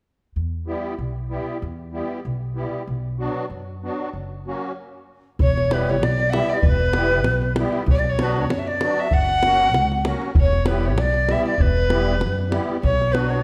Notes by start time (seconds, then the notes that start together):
0.36 E2
0.66 G3 B3 E4 G4
0.98 B1
1.29 G3 B3 E4 G4
1.62 E2
1.93 G3 B3 E4 G4
2.25 B1
2.55 G3 B3 E4 G4
2.87 B1
3.18 F#3 B3 D4 F#4
3.50 F#2
3.82 F#3 B3 D4 F#4
4.13 F#1
4.46 F#3 A#3 C#4 F#4
5.39 E1 C#5, davul low
5.58 davul high
5.70 G3 B3 E4 G4 B4, davul high
5.89 C#5, davul high
6.01 B1 D5, davul high
6.20 davul high
6.29 G3 B3 E5 F#5
6.33 E4 G4 E5, davul high
6.49 D5, davul high
6.63 E1 B4, davul low
6.67 B4
6.80 davul high
6.93 G3 B3 E4 G4, davul high
7.10 davul high
7.24 B1, davul high
7.42 davul high
7.56 G3 B3 E4 G4, davul high
7.73 davul high
7.86 B1, davul low
7.91 C#5
7.96 D5
8.04 davul high
8.09 C#5
8.18 F#3 B3 D4 F#4, davul high
8.22 B4
8.37 C#5, davul high
8.41 C#5
8.49 F#2, davul high
8.58 E5
8.66 D5, davul high
8.81 F#3 B3 D4 F#4, davul high
8.98 E5, davul high
9.11 F#1 F#5, davul low
9.29 davul high
9.43 F#3 A#3 C#4 F#4, davul high
9.61 davul high
9.74 C#2, davul high
9.92 davul high
10.04 F#3 A#3 C#4 F#4, davul high
10.22 davul high
10.35 E1, davul low
10.40 C#5
10.53 davul high
10.66 G3 B3 E4 G4 B4, davul high
10.83 C#5, davul high
10.87 C#5
10.96 B1 D5, davul high
11.00 D5
11.14 davul high
11.28 G3 B3 E4 G4 E5, davul high
11.46 D5, davul high
11.58 E1 B4, davul low
11.77 davul high
11.88 G3 B3 E4 G4, davul high
12.08 davul high
12.20 F#2, davul high
12.39 davul high
12.49 G3 B3 E4 G4, davul high
12.70 davul high
12.83 B1 C#5, davul low
13.02 davul high
13.11 F#3 B3 D4 F#4 B4, davul high
13.28 C#5, davul high